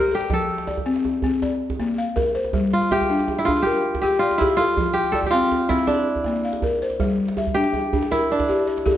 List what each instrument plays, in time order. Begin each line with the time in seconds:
Already playing: balafon G4 D5, kora A#4 C5
0.11 kora G4, balafon A4
0.21 djembe slap
0.30 balafon F3, kora A4, djembe tone, djembe bass
0.39 djembe slap
0.58 djembe slap
0.67 balafon D5, djembe tone
0.77 djembe bass
0.86 balafon C4
0.96 djembe slap
1.05 djembe tone
1.14 djembe slap
1.22 balafon C4, djembe bass
1.42 balafon D5, djembe tone
1.52 djembe slap
1.70 djembe slap, djembe bass
1.79 balafon A#3, djembe tone
1.98 balafon F5
2.16 balafon A#4, djembe tone, djembe bass
2.35 balafon C5
2.44 djembe slap
2.53 balafon G3, djembe tone, djembe bass
2.63 djembe slap
2.73 kora F4
2.82 djembe slap
2.91 kora G4, balafon E5, djembe tone
3.01 djembe bass
3.10 balafon D4
3.19 djembe slap
3.28 djembe tone
3.38 kora E4, djembe slap
3.45 balafon D4, kora F4, djembe bass
3.57 djembe slap
3.62 kora G4, balafon A#4, djembe tone
3.76 djembe slap
3.95 djembe slap, djembe bass
4.02 kora G4, balafon G4, djembe tone
4.19 kora F4, balafon D5
4.31 djembe slap
4.38 kora E4, balafon G4, djembe tone, djembe bass
4.57 kora F4, balafon A4
4.68 djembe slap
4.77 balafon F3, djembe tone, djembe bass
4.86 djembe slap
4.94 kora G4, djembe slap
5.04 djembe slap
5.12 kora A4, balafon D5, djembe slap, djembe tone
5.23 kora G4, djembe slap, djembe bass
5.31 balafon C4, kora F4
5.41 djembe slap
5.51 djembe slap, djembe tone
5.69 balafon C4, kora E4, djembe slap, djembe bass
5.79 djembe slap
5.87 kora D4, balafon D5, djembe tone
6.16 djembe bass
6.24 balafon A#3, djembe slap, djembe tone
6.35 djembe slap
6.45 balafon F5
6.53 djembe slap
6.62 balafon A#4, djembe tone, djembe bass
6.82 balafon C5
6.90 djembe slap
7.00 balafon G3, djembe tone, djembe bass
7.09 djembe slap
7.28 djembe slap
7.37 balafon E5, djembe tone
7.47 djembe bass
7.54 balafon D4, kora G4
7.64 djembe slap
7.74 djembe tone
7.84 djembe slap
7.93 balafon D4, djembe bass
8.02 djembe slap
8.11 kora E4, balafon A#4, djembe tone
8.21 djembe slap
8.31 kora D4
8.40 djembe slap, djembe bass
8.49 balafon G4, djembe tone
8.67 balafon D5
8.78 djembe slap
8.86 balafon G4 A4, djembe tone, djembe bass